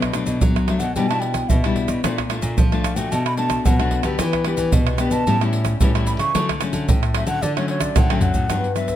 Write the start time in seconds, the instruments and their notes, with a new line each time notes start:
Already playing: nylon-string guitar B2 F#3 A3 D4
0.02 pandeiro, tamborim, shaker, surdo
0.13 nylon-string guitar F#3 A3 D4, pandeiro, tamborim, shaker
0.26 nylon-string guitar B2, pandeiro, shaker, surdo
0.41 nylon-string guitar F#2 F#3, pandeiro, shaker, surdo
0.56 pandeiro, tamborim, shaker
0.68 nylon-string guitar F#3 A3 D4, flute E5, pandeiro, tamborim
0.79 nylon-string guitar B2, flute F#5, pandeiro, shaker
0.95 nylon-string guitar B2 G3 D4 E4, flute G5, pandeiro, shaker, surdo
1.09 nylon-string guitar G3 D4 E4, flute A5, pandeiro, tamborim, shaker
1.20 flute G5, pandeiro
1.34 pandeiro, tamborim, shaker, surdo
1.49 nylon-string guitar B2, flute E5, pandeiro, shaker, surdo
1.64 nylon-string guitar G3 D4 E4, pandeiro, tamborim, shaker
1.76 pandeiro, surdo
1.88 nylon-string guitar B2, pandeiro, tamborim, shaker, surdo
2.04 nylon-string guitar A#2 A3 D4 F4, pandeiro, tamborim, shaker, surdo
2.18 pandeiro, tamborim, shaker, surdo
2.30 nylon-string guitar A3 D4 F4, pandeiro, tamborim, shaker
2.42 nylon-string guitar A#2, pandeiro, shaker, surdo
2.58 nylon-string guitar F3, pandeiro, shaker, surdo
2.72 nylon-string guitar A3 D4 F4, pandeiro, tamborim, shaker
2.83 flute F5, pandeiro, tamborim, shaker
2.96 nylon-string guitar A#2 A3 D4 F#4, flute G5, pandeiro, shaker
3.12 nylon-string guitar B2, flute A5, pandeiro, shaker, surdo
3.26 flute B5, pandeiro, tamborim, shaker
3.37 nylon-string guitar A3 D4 F#4, flute A5, pandeiro
3.50 pandeiro, tamborim, shaker, surdo
3.65 nylon-string guitar B2 F#3, flute F#5, pandeiro, shaker, surdo
3.80 nylon-string guitar A3 D4 F#4, pandeiro, tamborim, shaker
3.91 pandeiro, surdo
4.03 nylon-string guitar D3 B3 D4 G4, pandeiro, tamborim, shaker, surdo
4.19 nylon-string guitar E3, pandeiro, tamborim, shaker, surdo
4.33 pandeiro, tamborim, shaker, surdo
4.44 nylon-string guitar B3 D4 G4, pandeiro, tamborim
4.57 nylon-string guitar E3, pandeiro, shaker, surdo
4.72 nylon-string guitar B2, pandeiro, shaker, surdo
4.87 pandeiro, tamborim, shaker
4.98 nylon-string guitar B3 D4 G4, flute G5, pandeiro, tamborim, shaker
5.11 nylon-string guitar B2, flute A5, pandeiro, shaker
5.27 nylon-string guitar A2 G3 C#4 E4, pandeiro, shaker, surdo
5.41 nylon-string guitar G3 C#4 E4, pandeiro, tamborim, shaker
5.53 pandeiro
5.65 pandeiro, tamborim, shaker, surdo
5.81 nylon-string guitar A2 E3 G3 C#4 E4, pandeiro, shaker, surdo
5.95 nylon-string guitar G3 C#4 E4, pandeiro, tamborim, shaker
6.07 flute B5, pandeiro, shaker, surdo
6.19 nylon-string guitar C#3, flute C#6, pandeiro, tamborim, shaker, surdo
6.35 nylon-string guitar D3 F#3 A3 C#4, pandeiro, tamborim, shaker, surdo
6.49 pandeiro, tamborim, shaker, surdo
6.61 nylon-string guitar F#3 A3 C#4, pandeiro, tamborim, shaker
6.73 nylon-string guitar D3, pandeiro, shaker, surdo
6.88 nylon-string guitar A2, pandeiro, shaker, surdo
7.03 pandeiro, tamborim, shaker
7.14 nylon-string guitar F#3 A3 C#4, flute E5, pandeiro, tamborim
7.26 nylon-string guitar D3, flute F#5, pandeiro, shaker
7.42 nylon-string guitar D3, flute D5, pandeiro, shaker, surdo
7.57 nylon-string guitar F#3 A3 C#4, flute C#5, pandeiro, tamborim, shaker
7.68 flute C#5, pandeiro
7.80 flute D5, pandeiro, tamborim, shaker, surdo
7.96 nylon-string guitar A2 D3, flute F#5, pandeiro, tamborim, shaker, surdo
8.10 nylon-string guitar F#3 A3 C#4, flute G5, pandeiro, tamborim, shaker
8.21 flute F#5, surdo, pandeiro, shaker
8.34 nylon-string guitar A2, pandeiro, shaker, surdo
8.50 nylon-string guitar G2 F#3 B3 D4, pandeiro, tamborim, shaker, surdo
8.64 pandeiro, shaker
8.76 nylon-string guitar F#3 B3 D4, flute E5, pandeiro, tamborim, shaker
8.88 pandeiro, shaker, surdo